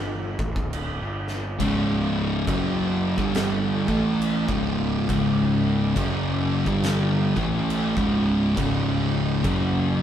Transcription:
Already playing: picked electric bass G1
0.39 picked electric bass A1, kick
0.56 picked electric bass D1, kick
0.73 crash
1.00 picked electric bass G1
1.28 snare
1.59 picked electric bass C#1, distorted electric guitar C#2 G#2 C#3, kick, crash
2.47 picked electric bass F#1, distorted electric guitar F#2 C#3 F#3, kick, crash
3.18 picked electric bass G1, distorted electric guitar G2 D3 G3, kick
3.35 snare, crash
3.88 picked electric bass A1, distorted electric guitar A2 E3 A3, kick
4.22 crash
4.48 picked electric bass C#1, distorted electric guitar C#2 G#2 C#3, kick
5.09 picked electric bass C#1, distorted electric guitar C#2 G#2 C#3, kick, crash
5.96 picked electric bass F#1, distorted electric guitar F#2 C#3 F#3, kick, crash
6.66 picked electric bass G1, distorted electric guitar G2 D3 G3, kick
6.84 snare, crash
7.37 picked electric bass A1, distorted electric guitar A2 E3 A3, kick
7.70 crash
7.97 picked electric bass C#1, distorted electric guitar C#2 G#2 C#3, kick
8.57 picked electric bass C#1, distorted electric guitar C#2 G#2 C#3, kick, crash
9.44 picked electric bass F#1, distorted electric guitar F#2 C#3 F#3, kick, crash

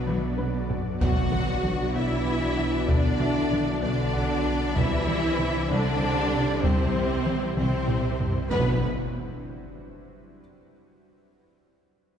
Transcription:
Already playing: detuned saw bass B1, synth drone B2 F#3 F#4 D5, cello section B3, french horn section D4 F#4, viola section D4, violin section B4 D5
0.07 double bass section B1, viola section F#3, synth pluck B3, taiko mid
0.38 double bass section B1, viola section F#3, felt piano B4, synth pluck B4, taiko high
0.70 double bass section B1, viola section D3, synth pluck F#4, taiko low
1.01 detuned saw bass B1, double bass section B1, cello section F#3, synth drone F#3 B3 D4 D5, synth pluck B3, french horn section D4 F#4, viola section F#4, violin section F#4 F#5, taiko, impact
1.32 double bass section B1, felt piano B3 B4, synth pluck F#4, taiko mid
1.64 double bass section B1, synth pluck D4, taiko mid
1.94 double bass section B1, cello section E3, synth pluck B3, violin section E4 E5, viola section E4
2.26 double bass section B1, synth pluck F#4
2.57 double bass section B1, synth pluck F#4, taiko rim
2.88 double bass section B1, cello section D3, synth pluck B3, viola section D4, violin section D4 D5, taiko
3.20 double bass section B1, felt piano E4 E5, synth pluck F#4, taiko mid
3.51 double bass section B1, synth pluck D4, taiko mid
3.82 double bass section B1, cello section D3, synth pluck B3, viola section D4, violin section D4 D5
4.13 double bass section B1, synth pluck F#4, felt piano F#5
4.45 double bass section B1, synth pluck F#4
4.76 detuned saw bass C2, double bass section C2, synth pluck C3, cello section E3, synth drone G3 C4 E4 C5, french horn section C4 G4, violin section E4 E5, viola section E4, taiko
5.07 double bass section C2, synth pluck G3, taiko mid
5.39 double bass section C2, synth pluck E3, taiko mid
5.70 double bass section C2, synth pluck C3, cello section D3, violin section D4 D5, viola section D4
6.02 double bass section C2, synth pluck G3
6.33 double bass section C2, synth pluck G3
6.64 double bass section C2, cello section C3, synth pluck C3, viola section C4, violin section C4 C5, taiko
6.95 double bass section C2, synth pluck G3, taiko mid
7.26 double bass section C2, synth pluck E3, taiko mid
7.57 double bass section C2, cello section C3, synth pluck C3, viola section C4, violin section C4 C5, taiko mid
7.88 double bass section C2, synth pluck G3, taiko low-mid
8.20 double bass section C2, synth pluck G3, taiko low
8.50 double bass section B1, detuned saw bass B1, cello section B3, violin section B3 B4, french horn section D4 F#4, viola section B4, impact

